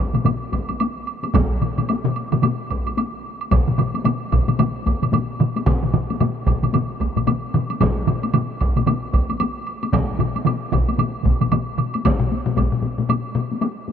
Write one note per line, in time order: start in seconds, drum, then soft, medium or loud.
0.14 taiko low-mid medium
0.14 taiko mid medium
0.14 taiko high medium
0.14 high woodblock soft
0.25 taiko low-mid medium
0.25 taiko mid loud
0.25 taiko high medium
0.25 high woodblock soft
0.52 taiko medium
0.52 taiko high soft
0.52 high woodblock soft
0.69 taiko high medium
0.69 high woodblock soft
0.80 taiko high medium
0.80 high woodblock medium
1.07 high woodblock soft
1.24 taiko high medium
1.24 high woodblock soft
1.34 taiko loud
1.34 taiko low-mid loud
1.34 taiko mid loud
1.34 taiko high medium
1.34 high woodblock medium
1.62 taiko low-mid medium
1.62 taiko mid medium
1.62 high woodblock soft
1.78 taiko low-mid medium
1.78 taiko mid medium
1.78 taiko high medium
1.78 high woodblock soft
1.89 taiko high medium
1.89 high woodblock medium
2.05 taiko low-mid loud
2.05 taiko mid medium
2.16 high woodblock soft
2.32 taiko low-mid loud
2.32 taiko mid medium
2.32 taiko high medium
2.32 high woodblock soft
2.43 taiko low-mid loud
2.43 taiko mid medium
2.43 taiko high medium
2.43 high woodblock medium
2.70 taiko medium
2.70 high woodblock soft
2.86 taiko high medium
2.86 high woodblock soft
2.97 taiko high medium
2.97 high woodblock medium
3.41 high woodblock soft
3.51 taiko medium
3.51 taiko low-mid medium
3.51 taiko mid medium
3.51 taiko high medium
3.51 high woodblock medium
3.67 taiko low-mid medium
3.67 taiko mid medium
3.78 taiko low-mid medium
3.78 taiko mid loud
3.78 high woodblock soft
3.94 taiko high medium
3.94 high woodblock soft
4.05 taiko low-mid medium
4.05 taiko mid medium
4.05 taiko high medium
4.05 high woodblock medium
4.32 taiko medium
4.32 taiko low-mid medium
4.32 taiko mid medium
4.32 high woodblock soft
4.48 taiko low-mid medium
4.48 taiko mid medium
4.48 taiko high medium
4.48 high woodblock soft
4.59 taiko low-mid loud
4.59 taiko mid loud
4.59 taiko high medium
4.59 high woodblock medium
4.86 taiko medium
4.86 taiko high medium
4.86 high woodblock soft
5.02 taiko low-mid medium
5.02 taiko mid medium
5.02 taiko high medium
5.02 high woodblock soft
5.13 taiko low-mid loud
5.13 taiko mid medium
5.13 taiko high medium
5.13 high woodblock medium
5.40 taiko low-mid medium
5.40 taiko mid loud
5.40 high woodblock soft
5.56 taiko high medium
5.56 high woodblock soft
5.67 taiko loud
5.67 taiko low-mid medium
5.67 taiko mid medium
5.67 taiko high medium
5.67 high woodblock soft
5.83 taiko low-mid medium
5.83 taiko mid medium
5.94 taiko low-mid medium
5.94 taiko mid loud
5.94 high woodblock soft
6.10 taiko high medium
6.10 high woodblock soft
6.20 taiko low-mid loud
6.20 taiko mid medium
6.20 taiko high medium
6.20 high woodblock soft
6.47 taiko medium
6.47 taiko low-mid medium
6.47 taiko mid medium
6.47 high woodblock soft
6.63 taiko low-mid medium
6.63 taiko mid medium
6.63 taiko high medium
6.63 high woodblock soft
6.74 taiko low-mid medium
6.74 taiko mid loud
6.74 taiko high medium
6.74 high woodblock soft
7.01 taiko medium
7.01 taiko high soft
7.01 high woodblock soft
7.16 taiko low-mid medium
7.16 taiko mid medium
7.16 taiko high soft
7.16 high woodblock soft
7.27 taiko low-mid loud
7.27 taiko mid medium
7.27 taiko high medium
7.27 high woodblock medium
7.54 taiko low-mid medium
7.54 taiko mid medium
7.54 high woodblock soft
7.70 taiko high soft
7.70 high woodblock soft
7.80 taiko medium
7.80 taiko low-mid medium
7.80 taiko mid medium
7.80 taiko high medium
7.80 high woodblock medium
8.07 taiko low-mid loud
8.07 taiko mid medium
8.07 high woodblock soft
8.23 taiko high medium
8.23 high woodblock soft
8.34 taiko low-mid medium
8.34 taiko mid loud
8.34 taiko high medium
8.34 high woodblock medium
8.61 taiko medium
8.61 high woodblock soft
8.76 taiko low-mid medium
8.76 taiko mid medium
8.76 taiko high medium
8.76 high woodblock soft
8.86 taiko low-mid medium
8.86 taiko mid loud
8.86 taiko high medium
8.86 high woodblock medium
9.13 taiko medium
9.13 taiko high soft
9.13 high woodblock soft
9.29 taiko high soft
9.29 high woodblock soft
9.40 taiko high medium
9.40 high woodblock medium
9.67 high woodblock soft
9.83 taiko high medium
9.83 high woodblock soft
9.92 taiko loud
9.92 taiko low-mid loud
9.92 taiko mid medium
9.92 taiko high medium
9.92 high woodblock medium
10.19 taiko low-mid loud
10.19 taiko mid loud
10.19 high woodblock soft
10.36 taiko high medium
10.36 high woodblock soft
10.45 taiko low-mid medium
10.45 taiko mid medium
10.45 taiko high medium
10.45 high woodblock medium
10.72 taiko medium
10.72 taiko low-mid loud
10.72 taiko mid medium
10.72 high woodblock medium
10.88 taiko high medium
10.88 high woodblock soft
10.98 taiko low-mid medium
10.98 taiko mid medium
10.98 taiko high medium
10.98 high woodblock medium
11.25 taiko medium
11.25 taiko low-mid medium
11.25 taiko mid medium
11.25 taiko high soft
11.41 taiko low-mid medium
11.41 taiko mid medium
11.41 taiko high soft
11.41 high woodblock soft
11.52 taiko low-mid medium
11.52 taiko mid medium
11.52 taiko high medium
11.52 high woodblock medium
11.78 taiko low-mid medium
11.78 taiko mid medium
11.78 high woodblock soft
11.94 taiko high medium
11.94 high woodblock soft
12.05 taiko loud
12.05 taiko high medium
12.05 high woodblock medium
12.20 taiko low-mid loud
12.32 taiko high medium
12.46 taiko low-mid loud
12.46 taiko high medium
12.56 taiko medium
12.56 taiko low-mid medium
12.56 taiko high medium
12.56 high woodblock soft
12.72 taiko low-mid medium
12.82 taiko low-mid medium
12.82 taiko high medium
12.98 taiko low-mid medium
12.98 taiko high medium
13.09 taiko low-mid medium
13.09 taiko high medium
13.09 high woodblock medium
13.35 taiko low-mid medium
13.35 taiko high medium
13.51 taiko high soft
13.62 taiko high medium
13.62 high woodblock soft
13.88 taiko high medium